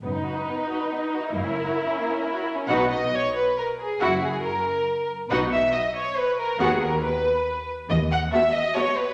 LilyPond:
<<
  \new Staff \with { instrumentName = "Violin section" } { \time 3/4 \key b \major \tempo 4 = 138 b'2. | ais'2~ ais'8 r8 | fis''8 r2 r8 | fis''8 r2 r8 |
fis''8 r2 r8 | fis''8 r2 r8 | r4 a''4 a''4 | }
  \new Staff \with { instrumentName = "Violin section" } { \time 3/4 \key b \major b16 dis'16 fis'16 dis'16 b16 dis'16 fis'16 dis'16 b16 dis'16 fis'16 dis'16 | ais16 cis'16 e'16 fis'16 e'16 cis'16 ais16 cis'16 e'16 fis'16 e'16 cis'16 | b'8 dis''8 cis''8 b'8 ais'8 gis'8 | fis'8 gis'8 ais'4. r8 |
b'8 e''8 dis''8 cis''8 b'8 ais'8 | gis'8 ais'8 b'4. r8 | dis''8 fis''8 e''8 dis''8 cis''8 b'8 | }
  \new Staff \with { instrumentName = "Viola section" } { \time 3/4 \key b \major dis'2. | e'2~ e'8 r8 | <dis' fis'>8 r2 r8 | <e' fis'>8 r2 r8 |
<dis' fis'>8 r2 r8 | <b fis'>8 r2 r8 | r4 <b fis'>4 <b fis'>4 | }
  \new Staff \with { instrumentName = "Cello section" } { \clef bass \time 3/4 \key b \major fis,4 r2 | fis,4 r2 | b,4 r2 | fis,4 r2 |
b,4 r2 | dis,4 r2 | dis,4 r2 | }
  \new Staff \with { instrumentName = "Double bass section" } { \clef bass \time 3/4 \key b \major fis,,4 r2 | fis,,4 r2 | b,,4 r2 | fis,,4 r2 |
b,,4 r2 | dis,4 r2 | dis,4 r2 | }
>>